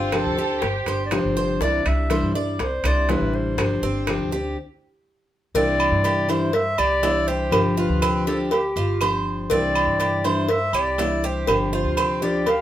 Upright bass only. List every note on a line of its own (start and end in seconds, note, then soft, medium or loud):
0.00 0.23 G1 medium
0.25 0.60 D2 medium
0.62 0.86 G1 medium
0.86 1.22 G1 medium
1.24 1.59 G1 medium
1.61 1.84 C2 loud
1.85 2.21 C2 medium
2.23 2.58 G2 medium
2.59 2.83 C2 loud
2.84 3.19 C2 medium
3.21 3.56 A1 medium
3.58 3.81 G1 loud
3.82 4.18 G1 medium
4.19 4.54 D2 medium
5.55 5.90 C2 loud
5.91 6.74 G2 medium
6.78 7.49 C2 loud
7.52 7.88 G1 loud
7.89 8.72 D2 medium
8.76 9.47 G1 loud
9.50 9.86 C2 loud
9.87 10.70 G2 medium
10.73 11.44 C2 loud
11.48 11.83 G1 loud
11.85 12.61 D2 medium